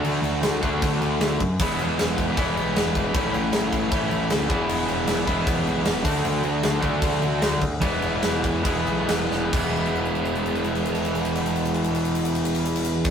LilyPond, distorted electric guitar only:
\new Staff \with { instrumentName = "Distorted electric guitar" } { \time 4/4 \key e \mixolydian \tempo 4 = 155 <d a d' fis'>4. <d a d' fis'>2 r8 | <e gis b e'>2 <e gis b e'>2 | <a, e a cis' e'>2 <a, e a cis' e'>4. <e gis b e'>8~ | <e gis b e'>4. <e gis b e'>2 <d a d' fis'>8~ |
<d a d' fis'>4. <d a d' fis'>2 r8 | <e gis b e'>2 <e gis b e'>2 | <e gis b e'>1~ | <e gis b e'>1 | }